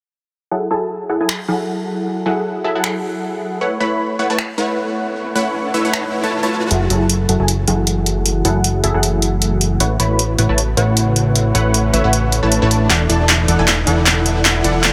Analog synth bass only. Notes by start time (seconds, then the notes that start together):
6.71 F#1
6.90 F#1
7.29 F#1
7.40 F#1
7.67 F#1
8.45 F#1
8.84 F#1
8.94 F#1
9.80 A1
10.00 A1
10.39 A1
10.49 A1
10.77 A1
11.55 A1
11.93 A1
12.04 A1
12.43 A1
12.62 A1
12.90 E1
13.10 E1
13.48 E1
13.59 E1
13.87 E1
14.64 E1